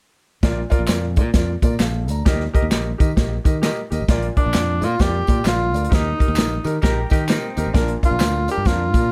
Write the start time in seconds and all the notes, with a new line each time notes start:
0.43 A#1 A#2 F4 A#4 D5, kick, snare, closed hi-hat
0.70 F4 A#4 D5, kick, closed hi-hat, tambourine
0.79 A#1
0.87 F2 F4 A#4 D5, snare, clap, closed hi-hat, tambourine
1.16 A#2 F4 A#4 D5, kick, closed hi-hat, tambourine
1.34 F2 F4 A#4 D5, kick, snare, closed hi-hat, tambourine
1.62 A#2 F4 A#4 D5, kick, closed hi-hat, tambourine
1.79 A#1 A4 F5, snare, clap, closed hi-hat, tambourine
2.08 D2 D5 A#5, closed hi-hat, tambourine
2.25 D#2 D#3 G4 A#4 D#5, kick, snare, closed hi-hat, tambourine
2.40 snare
2.54 G4 A#4 D#5, kick, closed hi-hat
2.62 D#2
2.70 A#1 G4 A#4 D#5, snare, clap, closed hi-hat, tambourine
2.98 D#3 G4 A#4 D#5, kick, closed hi-hat, tambourine
3.16 A#1 G4 A#4 D#5, kick, snare, closed hi-hat, tambourine
3.44 D#3 G4 A#4 D#5, kick, closed hi-hat, tambourine
3.62 G4 A#4 D#5, snare, clap, closed hi-hat, tambourine
3.90 D#2 G4 A#4 D#5, closed hi-hat, tambourine
4.00 A1
4.08 A#1 A#2 F4 A#4 D5, kick, snare, closed hi-hat, tambourine
4.22 closed hi-hat
4.36 D4 F4 A#4 D5, kick, closed hi-hat
4.46 A#1
4.53 F2 F4 A#4 D5, snare, clap, closed hi-hat, tambourine
4.81 A#2 F4 A#4 D5, closed hi-hat, tambourine
4.99 F2 F4 G4 A#4 D5, kick, snare, closed hi-hat, tambourine
5.27 A#2 F4 A#4 D5, kick, closed hi-hat, tambourine
5.44 A#1 F4 A#4 D5, snare, clap, closed hi-hat, tambourine
5.73 D2 F4 A#4 D5, closed hi-hat, tambourine
5.84 closed hi-hat
5.89 D#2 D#3 D#4 G4 A#4, kick, snare, closed hi-hat, tambourine
5.95 D#4
6.17 D#4 G4 A#4, kick, closed hi-hat
6.28 D#2
6.35 A#1 D#4 G4 A#4, snare, clap, closed hi-hat, tambourine
6.64 D#3 D#4 G4 A#4, closed hi-hat, tambourine
6.82 A#1 D#4 G4 A#4, kick, snare, closed hi-hat, tambourine
7.10 D#3 D#4 G4 A#4, kick, closed hi-hat, tambourine
7.27 C4 D#4 G4 A#4, snare, clap, closed hi-hat, tambourine
7.56 D#2 D#4 G4 A#4, closed hi-hat, tambourine
7.66 A1
7.73 A#1 A#2 D4 F4 A#4, kick, snare, closed hi-hat, tambourine
7.88 closed hi-hat
8.03 D4 F4 A#4, kick, closed hi-hat
8.11 A#1
8.20 D2 D4 F4 A#4, snare, clap, closed hi-hat, tambourine
8.48 D4 F4 G4 A#4, closed hi-hat, tambourine
8.58 G2
8.65 F2 D4 F4 A#4, kick, snare, closed hi-hat, tambourine
8.94 A#2 D4 F4 A#4, kick, closed hi-hat, tambourine